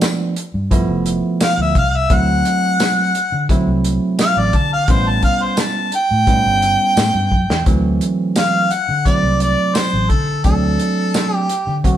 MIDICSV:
0, 0, Header, 1, 5, 480
1, 0, Start_track
1, 0, Tempo, 696056
1, 1450, Time_signature, 4, 2, 24, 8
1, 8257, End_track
2, 0, Start_track
2, 0, Title_t, "Harmonica"
2, 0, Program_c, 0, 22
2, 987, Note_on_c, 0, 77, 101
2, 1093, Note_off_c, 0, 77, 0
2, 1114, Note_on_c, 0, 76, 82
2, 1213, Note_off_c, 0, 76, 0
2, 1228, Note_on_c, 0, 77, 90
2, 1357, Note_on_c, 0, 76, 92
2, 1367, Note_off_c, 0, 77, 0
2, 1474, Note_on_c, 0, 78, 118
2, 1484, Note_off_c, 0, 76, 0
2, 2393, Note_off_c, 0, 78, 0
2, 2909, Note_on_c, 0, 77, 105
2, 3027, Note_on_c, 0, 74, 92
2, 3038, Note_off_c, 0, 77, 0
2, 3145, Note_on_c, 0, 81, 89
2, 3156, Note_off_c, 0, 74, 0
2, 3251, Note_off_c, 0, 81, 0
2, 3264, Note_on_c, 0, 77, 98
2, 3385, Note_on_c, 0, 72, 89
2, 3395, Note_off_c, 0, 77, 0
2, 3509, Note_on_c, 0, 81, 90
2, 3520, Note_off_c, 0, 72, 0
2, 3609, Note_off_c, 0, 81, 0
2, 3616, Note_on_c, 0, 77, 100
2, 3741, Note_on_c, 0, 72, 84
2, 3752, Note_off_c, 0, 77, 0
2, 3862, Note_on_c, 0, 81, 85
2, 3872, Note_off_c, 0, 72, 0
2, 4087, Note_off_c, 0, 81, 0
2, 4104, Note_on_c, 0, 79, 108
2, 5267, Note_off_c, 0, 79, 0
2, 5778, Note_on_c, 0, 77, 91
2, 6013, Note_on_c, 0, 78, 104
2, 6023, Note_off_c, 0, 77, 0
2, 6256, Note_on_c, 0, 74, 91
2, 6267, Note_off_c, 0, 78, 0
2, 6492, Note_off_c, 0, 74, 0
2, 6498, Note_on_c, 0, 74, 93
2, 6726, Note_on_c, 0, 72, 83
2, 6737, Note_off_c, 0, 74, 0
2, 6964, Note_on_c, 0, 69, 82
2, 6975, Note_off_c, 0, 72, 0
2, 7197, Note_off_c, 0, 69, 0
2, 7201, Note_on_c, 0, 69, 81
2, 7836, Note_off_c, 0, 69, 0
2, 7836, Note_on_c, 0, 67, 81
2, 8138, Note_off_c, 0, 67, 0
2, 8257, End_track
3, 0, Start_track
3, 0, Title_t, "Tine electric piano"
3, 0, Program_c, 1, 4
3, 0, Note_on_c, 1, 53, 91
3, 0, Note_on_c, 1, 57, 80
3, 0, Note_on_c, 1, 59, 83
3, 0, Note_on_c, 1, 62, 97
3, 229, Note_off_c, 1, 53, 0
3, 231, Note_off_c, 1, 57, 0
3, 233, Note_off_c, 1, 59, 0
3, 235, Note_off_c, 1, 62, 0
3, 489, Note_on_c, 1, 53, 96
3, 493, Note_on_c, 1, 57, 90
3, 494, Note_on_c, 1, 59, 86
3, 497, Note_on_c, 1, 64, 109
3, 1184, Note_off_c, 1, 53, 0
3, 1186, Note_off_c, 1, 57, 0
3, 1187, Note_off_c, 1, 59, 0
3, 1189, Note_off_c, 1, 64, 0
3, 1449, Note_on_c, 1, 54, 77
3, 1452, Note_on_c, 1, 57, 72
3, 1455, Note_on_c, 1, 60, 68
3, 1457, Note_on_c, 1, 64, 77
3, 2144, Note_off_c, 1, 54, 0
3, 2145, Note_off_c, 1, 57, 0
3, 2147, Note_off_c, 1, 60, 0
3, 2148, Note_off_c, 1, 64, 0
3, 2410, Note_on_c, 1, 54, 86
3, 2414, Note_on_c, 1, 57, 86
3, 2417, Note_on_c, 1, 60, 83
3, 2420, Note_on_c, 1, 64, 107
3, 3104, Note_off_c, 1, 54, 0
3, 3106, Note_off_c, 1, 57, 0
3, 3107, Note_off_c, 1, 60, 0
3, 3109, Note_off_c, 1, 64, 0
3, 3369, Note_on_c, 1, 55, 74
3, 3372, Note_on_c, 1, 59, 76
3, 3375, Note_on_c, 1, 61, 70
3, 3378, Note_on_c, 1, 64, 90
3, 4063, Note_off_c, 1, 55, 0
3, 4064, Note_off_c, 1, 59, 0
3, 4066, Note_off_c, 1, 61, 0
3, 4067, Note_off_c, 1, 64, 0
3, 4324, Note_on_c, 1, 55, 81
3, 4329, Note_on_c, 1, 59, 76
3, 4331, Note_on_c, 1, 61, 71
3, 4333, Note_on_c, 1, 64, 86
3, 5021, Note_off_c, 1, 55, 0
3, 5023, Note_off_c, 1, 59, 0
3, 5024, Note_off_c, 1, 61, 0
3, 5025, Note_off_c, 1, 64, 0
3, 5285, Note_on_c, 1, 54, 78
3, 5288, Note_on_c, 1, 57, 77
3, 5290, Note_on_c, 1, 60, 77
3, 5294, Note_on_c, 1, 52, 96
3, 5982, Note_off_c, 1, 54, 0
3, 5983, Note_off_c, 1, 57, 0
3, 5984, Note_off_c, 1, 60, 0
3, 5986, Note_off_c, 1, 52, 0
3, 6241, Note_on_c, 1, 54, 70
3, 6246, Note_on_c, 1, 57, 68
3, 6250, Note_on_c, 1, 60, 66
3, 6251, Note_on_c, 1, 64, 76
3, 6940, Note_off_c, 1, 54, 0
3, 6943, Note_off_c, 1, 57, 0
3, 6945, Note_off_c, 1, 60, 0
3, 6945, Note_off_c, 1, 64, 0
3, 7202, Note_on_c, 1, 54, 73
3, 7205, Note_on_c, 1, 57, 67
3, 7210, Note_on_c, 1, 60, 65
3, 7211, Note_on_c, 1, 62, 77
3, 7901, Note_off_c, 1, 54, 0
3, 7903, Note_off_c, 1, 57, 0
3, 7905, Note_off_c, 1, 60, 0
3, 7906, Note_off_c, 1, 62, 0
3, 8164, Note_on_c, 1, 54, 88
3, 8167, Note_on_c, 1, 57, 77
3, 8171, Note_on_c, 1, 60, 84
3, 8173, Note_on_c, 1, 66, 98
3, 8257, Note_off_c, 1, 54, 0
3, 8257, Note_off_c, 1, 57, 0
3, 8257, Note_off_c, 1, 60, 0
3, 8257, Note_off_c, 1, 66, 0
3, 8257, End_track
4, 0, Start_track
4, 0, Title_t, "Fingered electric bass"
4, 0, Program_c, 2, 33
4, 373, Note_on_c, 2, 43, 92
4, 582, Note_off_c, 2, 43, 0
4, 609, Note_on_c, 2, 29, 97
4, 820, Note_off_c, 2, 29, 0
4, 1088, Note_on_c, 2, 38, 85
4, 1192, Note_off_c, 2, 38, 0
4, 1209, Note_on_c, 2, 36, 92
4, 1418, Note_off_c, 2, 36, 0
4, 1450, Note_on_c, 2, 38, 91
4, 1659, Note_off_c, 2, 38, 0
4, 2291, Note_on_c, 2, 50, 89
4, 2500, Note_off_c, 2, 50, 0
4, 2528, Note_on_c, 2, 36, 98
4, 2738, Note_off_c, 2, 36, 0
4, 3010, Note_on_c, 2, 33, 81
4, 3112, Note_off_c, 2, 33, 0
4, 3128, Note_on_c, 2, 50, 96
4, 3336, Note_off_c, 2, 50, 0
4, 3365, Note_on_c, 2, 33, 96
4, 3575, Note_off_c, 2, 33, 0
4, 4212, Note_on_c, 2, 45, 91
4, 4420, Note_off_c, 2, 45, 0
4, 4450, Note_on_c, 2, 31, 93
4, 4658, Note_off_c, 2, 31, 0
4, 4804, Note_on_c, 2, 45, 86
4, 4915, Note_off_c, 2, 45, 0
4, 4929, Note_on_c, 2, 43, 83
4, 5035, Note_off_c, 2, 43, 0
4, 5046, Note_on_c, 2, 42, 89
4, 5156, Note_off_c, 2, 42, 0
4, 5167, Note_on_c, 2, 40, 83
4, 5274, Note_off_c, 2, 40, 0
4, 5287, Note_on_c, 2, 38, 88
4, 5496, Note_off_c, 2, 38, 0
4, 6128, Note_on_c, 2, 50, 82
4, 6337, Note_off_c, 2, 50, 0
4, 6367, Note_on_c, 2, 36, 97
4, 6577, Note_off_c, 2, 36, 0
4, 6849, Note_on_c, 2, 33, 82
4, 6952, Note_off_c, 2, 33, 0
4, 6967, Note_on_c, 2, 50, 89
4, 7176, Note_off_c, 2, 50, 0
4, 7204, Note_on_c, 2, 38, 90
4, 7415, Note_off_c, 2, 38, 0
4, 8047, Note_on_c, 2, 50, 88
4, 8257, Note_off_c, 2, 50, 0
4, 8257, End_track
5, 0, Start_track
5, 0, Title_t, "Drums"
5, 10, Note_on_c, 9, 42, 88
5, 10, Note_on_c, 9, 54, 117
5, 14, Note_on_c, 9, 38, 108
5, 79, Note_off_c, 9, 42, 0
5, 79, Note_off_c, 9, 54, 0
5, 83, Note_off_c, 9, 38, 0
5, 251, Note_on_c, 9, 42, 67
5, 320, Note_off_c, 9, 42, 0
5, 491, Note_on_c, 9, 36, 80
5, 492, Note_on_c, 9, 42, 86
5, 560, Note_off_c, 9, 36, 0
5, 561, Note_off_c, 9, 42, 0
5, 729, Note_on_c, 9, 42, 67
5, 798, Note_off_c, 9, 42, 0
5, 969, Note_on_c, 9, 42, 82
5, 969, Note_on_c, 9, 54, 110
5, 973, Note_on_c, 9, 38, 111
5, 1038, Note_off_c, 9, 42, 0
5, 1038, Note_off_c, 9, 54, 0
5, 1042, Note_off_c, 9, 38, 0
5, 1208, Note_on_c, 9, 42, 59
5, 1209, Note_on_c, 9, 36, 79
5, 1277, Note_off_c, 9, 42, 0
5, 1278, Note_off_c, 9, 36, 0
5, 1448, Note_on_c, 9, 42, 84
5, 1449, Note_on_c, 9, 36, 105
5, 1517, Note_off_c, 9, 42, 0
5, 1518, Note_off_c, 9, 36, 0
5, 1691, Note_on_c, 9, 42, 63
5, 1760, Note_off_c, 9, 42, 0
5, 1930, Note_on_c, 9, 42, 87
5, 1930, Note_on_c, 9, 54, 108
5, 1934, Note_on_c, 9, 38, 108
5, 1999, Note_off_c, 9, 42, 0
5, 1999, Note_off_c, 9, 54, 0
5, 2003, Note_off_c, 9, 38, 0
5, 2171, Note_on_c, 9, 42, 63
5, 2240, Note_off_c, 9, 42, 0
5, 2409, Note_on_c, 9, 36, 81
5, 2411, Note_on_c, 9, 42, 81
5, 2478, Note_off_c, 9, 36, 0
5, 2480, Note_off_c, 9, 42, 0
5, 2651, Note_on_c, 9, 42, 62
5, 2720, Note_off_c, 9, 42, 0
5, 2887, Note_on_c, 9, 42, 81
5, 2887, Note_on_c, 9, 54, 114
5, 2891, Note_on_c, 9, 38, 116
5, 2956, Note_off_c, 9, 42, 0
5, 2956, Note_off_c, 9, 54, 0
5, 2960, Note_off_c, 9, 38, 0
5, 3125, Note_on_c, 9, 42, 55
5, 3127, Note_on_c, 9, 36, 78
5, 3194, Note_off_c, 9, 42, 0
5, 3196, Note_off_c, 9, 36, 0
5, 3364, Note_on_c, 9, 42, 85
5, 3367, Note_on_c, 9, 36, 104
5, 3433, Note_off_c, 9, 42, 0
5, 3436, Note_off_c, 9, 36, 0
5, 3604, Note_on_c, 9, 42, 58
5, 3606, Note_on_c, 9, 36, 73
5, 3672, Note_off_c, 9, 42, 0
5, 3675, Note_off_c, 9, 36, 0
5, 3842, Note_on_c, 9, 42, 88
5, 3842, Note_on_c, 9, 54, 114
5, 3846, Note_on_c, 9, 38, 104
5, 3911, Note_off_c, 9, 42, 0
5, 3911, Note_off_c, 9, 54, 0
5, 3915, Note_off_c, 9, 38, 0
5, 4082, Note_on_c, 9, 42, 65
5, 4151, Note_off_c, 9, 42, 0
5, 4325, Note_on_c, 9, 36, 85
5, 4325, Note_on_c, 9, 42, 80
5, 4394, Note_off_c, 9, 36, 0
5, 4394, Note_off_c, 9, 42, 0
5, 4567, Note_on_c, 9, 42, 62
5, 4636, Note_off_c, 9, 42, 0
5, 4806, Note_on_c, 9, 42, 92
5, 4806, Note_on_c, 9, 54, 119
5, 4810, Note_on_c, 9, 38, 109
5, 4875, Note_off_c, 9, 42, 0
5, 4875, Note_off_c, 9, 54, 0
5, 4879, Note_off_c, 9, 38, 0
5, 5046, Note_on_c, 9, 36, 63
5, 5115, Note_off_c, 9, 36, 0
5, 5174, Note_on_c, 9, 38, 93
5, 5243, Note_off_c, 9, 38, 0
5, 5284, Note_on_c, 9, 42, 81
5, 5286, Note_on_c, 9, 36, 97
5, 5353, Note_off_c, 9, 42, 0
5, 5355, Note_off_c, 9, 36, 0
5, 5524, Note_on_c, 9, 42, 59
5, 5593, Note_off_c, 9, 42, 0
5, 5763, Note_on_c, 9, 42, 81
5, 5763, Note_on_c, 9, 54, 101
5, 5767, Note_on_c, 9, 38, 106
5, 5831, Note_off_c, 9, 42, 0
5, 5831, Note_off_c, 9, 54, 0
5, 5836, Note_off_c, 9, 38, 0
5, 6004, Note_on_c, 9, 42, 59
5, 6073, Note_off_c, 9, 42, 0
5, 6245, Note_on_c, 9, 36, 75
5, 6247, Note_on_c, 9, 42, 79
5, 6314, Note_off_c, 9, 36, 0
5, 6316, Note_off_c, 9, 42, 0
5, 6484, Note_on_c, 9, 42, 57
5, 6553, Note_off_c, 9, 42, 0
5, 6724, Note_on_c, 9, 42, 76
5, 6724, Note_on_c, 9, 54, 106
5, 6728, Note_on_c, 9, 38, 105
5, 6793, Note_off_c, 9, 42, 0
5, 6793, Note_off_c, 9, 54, 0
5, 6797, Note_off_c, 9, 38, 0
5, 6963, Note_on_c, 9, 42, 55
5, 6964, Note_on_c, 9, 36, 79
5, 7032, Note_off_c, 9, 42, 0
5, 7033, Note_off_c, 9, 36, 0
5, 7200, Note_on_c, 9, 42, 75
5, 7204, Note_on_c, 9, 36, 99
5, 7269, Note_off_c, 9, 42, 0
5, 7273, Note_off_c, 9, 36, 0
5, 7444, Note_on_c, 9, 42, 56
5, 7513, Note_off_c, 9, 42, 0
5, 7684, Note_on_c, 9, 42, 82
5, 7684, Note_on_c, 9, 54, 102
5, 7688, Note_on_c, 9, 38, 99
5, 7753, Note_off_c, 9, 42, 0
5, 7753, Note_off_c, 9, 54, 0
5, 7757, Note_off_c, 9, 38, 0
5, 7927, Note_on_c, 9, 42, 60
5, 7996, Note_off_c, 9, 42, 0
5, 8167, Note_on_c, 9, 36, 76
5, 8169, Note_on_c, 9, 42, 81
5, 8236, Note_off_c, 9, 36, 0
5, 8238, Note_off_c, 9, 42, 0
5, 8257, End_track
0, 0, End_of_file